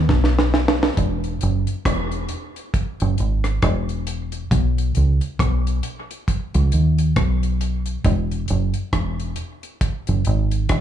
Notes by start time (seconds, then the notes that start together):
0.09 B1, kick, snare
0.24 snare
0.39 snare
0.54 snare
0.68 snare
0.83 snare
0.97 E1, kick, closed hi-hat
1.24 closed hi-hat
1.41 F#1, closed hi-hat
1.67 closed hi-hat
1.85 E1, kick, cross-stick, closed hi-hat
2.12 closed hi-hat
2.29 closed hi-hat
2.56 closed hi-hat
2.74 kick, closed hi-hat
3.00 F#1, closed hi-hat
3.18 G#1, closed hi-hat
3.44 cross-stick, closed hi-hat
3.62 E1, kick, cross-stick, closed hi-hat
3.89 closed hi-hat
4.07 closed hi-hat
4.32 closed hi-hat
4.51 B1, kick, closed hi-hat
4.78 closed hi-hat
4.95 C#2, closed hi-hat
5.21 closed hi-hat
5.39 B1, kick, cross-stick, closed hi-hat
5.67 closed hi-hat
5.83 closed hi-hat
6.11 closed hi-hat
6.28 kick, closed hi-hat
6.54 C#2, closed hi-hat
6.72 D#2, closed hi-hat
6.98 closed hi-hat
7.16 B1, kick, cross-stick, closed hi-hat
7.43 closed hi-hat
7.61 closed hi-hat
7.86 closed hi-hat
8.04 E1, kick, closed hi-hat
8.32 closed hi-hat
8.48 F#1, closed hi-hat
8.74 closed hi-hat
8.93 E1, kick, cross-stick, closed hi-hat
9.20 closed hi-hat
9.36 closed hi-hat
9.63 closed hi-hat
9.81 kick, closed hi-hat
10.07 F#1, closed hi-hat
10.25 G#1, closed hi-hat
10.51 closed hi-hat
10.69 E1, kick, cross-stick, closed hi-hat